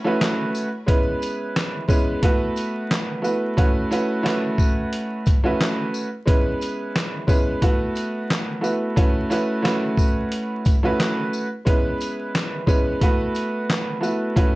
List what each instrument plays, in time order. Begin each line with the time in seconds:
Already playing: string section A3 C#4 F#4 B4
0.04 upright piano A3 C#4 E4 F#4 B4
0.21 snare, clap, closed hi-hat
0.55 tambourine, shaker
0.86 upright piano G#3 B3 C#4 E4 B4, kick, closed hi-hat
1.22 closed hi-hat, tambourine
1.56 snare, clap, closed hi-hat
1.88 upright piano G#3 B3 C#4 E4 B4, kick, tambourine
2.22 upright piano A3 B3 E4 F#4 B4, kick, closed hi-hat
2.56 closed hi-hat, tambourine
2.91 snare, clap, closed hi-hat
3.22 upright piano A3 B3 E4 F#4 B4, tambourine
3.57 upright piano A3 C#4 E4 F#4 B4, kick, closed hi-hat
3.91 upright piano A3 C#4 E4 F#4 B4, closed hi-hat, tambourine
4.23 upright piano A3 C#4 E4 F#4 B4, snare, clap, closed hi-hat
4.58 kick, tambourine
4.93 closed hi-hat
5.26 kick, closed hi-hat, tambourine
5.44 upright piano A3 C#4 E4 F#4 B4
5.61 snare, clap, closed hi-hat
5.94 tambourine
6.26 upright piano G#3 B3 C#4 E4 B4, kick, closed hi-hat
6.61 closed hi-hat, tambourine
6.96 snare, clap, closed hi-hat
7.27 upright piano G#3 B3 C#4 E4 B4, kick, tambourine
7.62 upright piano A3 B3 E4 F#4 B4, kick, closed hi-hat
7.95 closed hi-hat, tambourine
8.30 snare, clap, closed hi-hat
8.61 upright piano A3 B3 E4 F#4 B4, tambourine
8.96 upright piano A3 C#4 E4 F#4 B4, kick, closed hi-hat
9.30 upright piano A3 C#4 E4 F#4 B4, closed hi-hat, tambourine
9.62 upright piano A3 C#4 E4 F#4 B4, snare, clap, closed hi-hat
9.97 kick, tambourine
10.32 closed hi-hat
10.65 kick, closed hi-hat, tambourine
10.83 upright piano A3 C#4 E4 F#4 B4
11.00 snare, clap, closed hi-hat
11.33 tambourine
11.65 upright piano G#3 B3 C#4 E4 B4, kick, closed hi-hat
12.00 closed hi-hat, tambourine
12.35 snare, clap, closed hi-hat
12.66 upright piano G#3 B3 C#4 E4 B4, kick, tambourine
13.01 upright piano A3 B3 E4 F#4 B4, kick, closed hi-hat
13.35 closed hi-hat, tambourine
13.70 snare, clap, closed hi-hat
14.01 upright piano A3 B3 E4 F#4 B4, tambourine
14.36 upright piano A3 C#4 E4 F#4 B4, kick, closed hi-hat